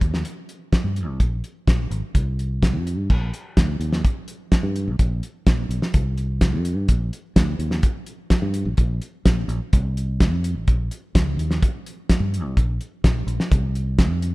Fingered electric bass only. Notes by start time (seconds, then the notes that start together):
0.01 D#2
0.84 G2
1.08 C2
1.20 A#1
1.67 A#1
1.91 G#1
2.14 C2
2.73 F2
2.97 G2
3.10 A#1
3.57 D2
3.80 D#2
4.63 G2
4.88 C2
4.99 A#1
5.47 A#1
5.69 B1
5.94 C2
6.53 F2
6.76 G2
6.89 A#1
7.36 D2
7.59 D#2
8.42 G2
8.65 A#1
8.78 A#1
9.25 A#1
9.48 A#1
9.73 C2
10.31 F2
10.55 A1
10.68 A#1
11.15 C#2
11.37 D#2
12.20 G2
12.45 C2
12.57 A#1
13.04 A#1
13.27 A#1
13.51 C2
14.10 F2